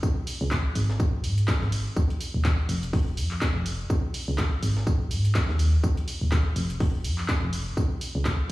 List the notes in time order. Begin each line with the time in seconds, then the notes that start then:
0.03 C#2, kick, tambourine
0.27 open hi-hat, tambourine
0.41 C#2
0.51 kick, snare, clap, tambourine
0.75 G#1, open hi-hat, tambourine
0.89 snare
1.00 kick, tambourine
1.24 G#2, open hi-hat, tambourine
1.38 closed hi-hat
1.48 kick, snare, clap, tambourine
1.62 G#1, snare
1.72 open hi-hat, tambourine
1.96 D#1, kick, tambourine
2.10 closed hi-hat
2.21 open hi-hat, tambourine
2.34 D#1
2.45 kick, snare, clap, tambourine
2.69 F1, open hi-hat, tambourine
2.83 closed hi-hat
2.93 kick, open hi-hat
3.17 F2, open hi-hat, tambourine
3.31 clap
3.41 kick, snare, clap, tambourine
3.55 F1
3.66 open hi-hat, tambourine
3.90 C#2, kick, tambourine
4.14 open hi-hat, tambourine
4.28 C#2
4.38 kick, snare, clap, tambourine
4.63 G#1, open hi-hat, tambourine
4.76 snare
4.87 kick, tambourine
5.11 G#2, open hi-hat, tambourine
5.25 closed hi-hat
5.35 kick, snare, clap, tambourine
5.49 D#2, snare
5.59 open hi-hat, tambourine
5.84 D#1, kick, tambourine
5.97 closed hi-hat
6.08 open hi-hat, tambourine
6.21 D#1
6.32 kick, snare, clap, tambourine
6.56 F1, open hi-hat, tambourine
6.70 closed hi-hat
6.80 kick, open hi-hat
7.04 F2, open hi-hat, tambourine
7.18 clap
7.28 kick, snare, clap, tambourine
7.43 F1
7.53 open hi-hat, tambourine
7.77 C#2, kick, tambourine
8.01 open hi-hat, tambourine
8.15 C#2
8.25 kick, snare, clap, tambourine